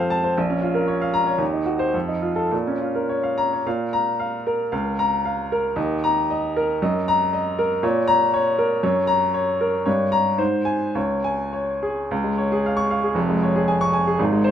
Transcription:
Already playing: F2 C4 F4 A4 C5 F5
0.10 A5
0.24 C5
0.38 A#1
0.50 C#4
0.62 F4
0.75 A#4
0.88 C#5
1.02 F5
1.14 A#5
1.27 C#5
1.38 D#2
1.53 D#4
1.66 F#4
1.79 C5
1.94 F2
2.09 D#4
2.22 F4
2.36 A4
2.51 A#2
2.67 C#4
2.81 F4
2.95 A#4
3.09 C#5
3.23 F5
3.38 A#5
3.53 C#5
3.66 A#2 F5
3.93 A#5
4.20 F5
4.47 A#4
4.72 C#2 F5
4.99 A#5
5.25 F5
5.52 A#4
5.76 D#2 D#5
6.04 A#5
6.30 D#5
6.57 A#4
6.82 F#2 D#5
7.08 A#5
7.33 D#5
7.59 A#4
7.83 A#2 C#5
8.08 A#5
8.34 C#5
8.59 A#4
8.83 F#2 C#5
9.07 A#5
9.34 C#5
9.61 A#4
9.86 G2 C#5
10.12 A#5
10.38 G#2 C5
10.65 G#5
10.95 C#2 C#5
11.24 G#5
11.53 C#5
11.83 G#4
12.11 C#2
12.24 G#3
12.38 C#5
12.52 G#4
12.66 F5
12.77 C#6
12.91 F5
13.04 G#4
13.15 F1 F2
13.30 G#3
13.43 C#5
13.56 G#4
13.68 G#5
13.81 C#6
13.93 G#5
14.07 G#4
14.19 G#1 G#2
14.32 G#3
14.44 C5

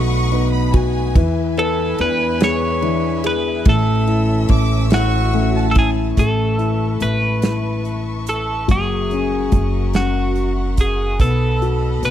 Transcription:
Already playing: B1 F#3 A3 B3 D#4 F#4 A4 F#5 B5 C#6 D#6
0.32 B3 D#4, ride
0.53 B5
0.74 F#4 G#5, kick, ride
1.14 E2 E3 B4 E5 G#5, kick, ride
1.57 B3 A4 B4, ride
1.98 E2 B3 D4 B4, ride
2.40 B3 G#4 C#5, snare, ride
2.82 E3 D4, ride
3.24 G#4 B4, ride
3.65 A1 E3 A3 C#4 A4 E6, kick, ride
4.07 A3 E4, ride
4.49 A1 A3 C#4 D6, kick, ride
4.90 A3 E4 F#4 C#6, snare, ride
5.33 A3 C#4, ride
5.55 A5
5.71 E4 A4, ride
5.76 G#4, kick
6.16 A1 A3 A4 B4 E5 A5 C#6, kick, closed hi-hat
6.58 E4, closed hi-hat
7.00 A1 A3 B4, closed hi-hat
7.42 E4, snare, closed hi-hat
7.85 closed hi-hat
8.27 A4, closed hi-hat
8.68 F#1 F#3 G#4 A#4 F#5, kick, closed hi-hat
9.11 C#4, closed hi-hat
9.52 F#1 F#3, kick, closed hi-hat
9.94 C#4 F#4, snare, closed hi-hat
10.35 closed hi-hat
10.77 G#4, kick, closed hi-hat
11.19 B1 B3 A4 D#5 B5, kick, closed hi-hat
11.62 F#4, closed hi-hat
12.03 B1 B3 B4, closed hi-hat

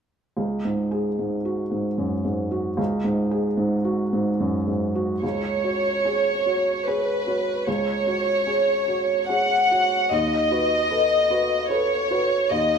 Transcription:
0.37 C#2
0.65 G#2
0.91 G#4
1.19 G#2
1.45 F#4
1.71 G#2
1.98 F#2
2.25 G#2
2.51 F#4
2.77 C#2
3.04 G#2
3.31 G#4
3.57 G#2
3.84 F#4
4.13 G#2
4.40 F#2
4.67 G#2
4.95 F#4
5.23 C#2 C#5
5.64 F#4 C#5
6.05 G#4 C#5
6.46 F#4 C#5
6.85 G#4 B4 C#5
7.27 F#4 C#5
7.66 C#2 C#5
8.07 F#4 C#5
8.47 G#4 C#5
8.88 F#4 C#5
9.29 G#4 C#5 F#5
9.71 F#4 C#5
10.10 D#2 D#5
10.51 F#4 B4
10.90 A4 B4
11.30 F#4 B4
11.70 A4 B4 C#5
12.11 F#4 B4
12.49 D#2 D#5

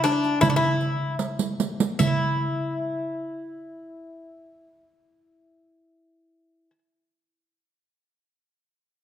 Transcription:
0.04 D4, riq, darbuka tek
0.24 riq
0.41 E4, riq, darbuka dum
0.50 D4
0.56 E4
0.81 riq, darbuka ka
1.19 riq, darbuka tek
1.39 riq
1.60 riq, darbuka ka
1.80 riq, darbuka ka
1.99 E4, riq, darbuka dum

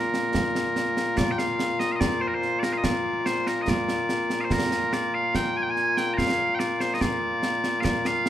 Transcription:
Already playing: A#2 A#3 F4 A#4
0.14 snare
0.34 concert bass drum, snare
0.55 snare
0.76 snare
0.97 snare
1.17 D5, concert bass drum, snare
1.31 G5
1.38 F5, snare
1.59 snare
1.80 D#5, snare
1.92 D#5 F5
2.00 D5, concert bass drum, snare
2.21 C5
2.28 A#4
2.35 C5
2.42 snare
2.59 D5, snare
2.63 A#4
2.73 F5
2.78 D#5
2.84 D5, concert bass drum, snare
3.26 C5, snare
3.47 A#4, snare
3.62 D#5
3.68 D5, concert bass drum, snare
3.88 snare
4.09 snare
4.30 snare
4.41 C5 F5
4.50 A#4, concert bass drum, snare
4.72 snare
4.93 D5, snare
5.14 F5
5.35 G5, concert bass drum, snare
5.57 G#5
5.62 G5
5.70 G#5
5.76 snare
5.97 G5, snare
6.14 F5 A#5
6.18 concert bass drum, snare
6.55 G5
6.59 D5, snare
6.80 C5, snare
6.94 D#5
7.01 D5, concert bass drum, snare
7.43 snare
7.64 snare
7.80 D5 F5
7.85 concert bass drum, snare
8.05 F5, snare
8.26 snare

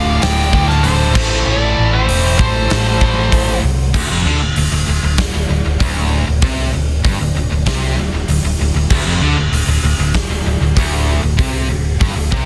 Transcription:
Already playing: D1 D2 A2 D3 D5 F5
0.22 D1 D5 G5, snare, open hi-hat
0.53 D2 A2 D3, kick
0.68 F5 A5, snare
0.83 D1 D2 A2 D3 A4 C5, open hi-hat
1.15 A1 A2 E3 A3, kick, crash
1.46 A1 A4 D5
1.78 A1
1.93 G4 C5
2.08 E1, open hi-hat
2.38 A1 A4 C5, kick
2.70 A1 A2 E3 A3, snare, open hi-hat
3.01 A2 E3 A3, kick
3.32 A1, kick, open hi-hat
3.63 C2
3.94 D1 D2, kick, crash
4.09 F1 F2
4.25 D2 D3
4.41 D1 D2
4.56 D1 D2, open hi-hat
4.72 D1 D2
4.88 D1 D2
5.03 D1 D2
5.18 kick, snare, open hi-hat
5.34 D1 D2
5.49 D1 D2
5.65 D1 D2
5.80 D1 D2, kick, open hi-hat
6.27 D1 D2
6.42 C2 C3, kick, open hi-hat
6.73 D1 D2
7.04 G1 G2, kick, open hi-hat
7.19 D1 D2
7.35 D1 D2
7.50 D1 D2
7.66 C2 C3, kick, snare, open hi-hat
7.97 D1 D2
8.13 D1 D2
8.28 D1 D2, open hi-hat
8.43 D1 D2
8.58 D1 D2
8.75 D1 D2
8.90 D1 D2, kick, crash
9.05 F1 F2
9.21 D2 D3
9.36 D1 D2
9.51 D1 D2, open hi-hat
9.66 D1 D2
9.82 D1 D2
9.98 D1 D2
10.14 kick, snare, open hi-hat
10.29 D1 D2
10.45 D1 D2
10.60 D1 D2
10.76 D1 D2, kick, open hi-hat
11.23 D1 D2
11.39 C2 C3, kick, open hi-hat
11.70 D1 D2
12.01 G1 G2, kick, open hi-hat
12.16 D1 D2
12.32 C2 C3, kick

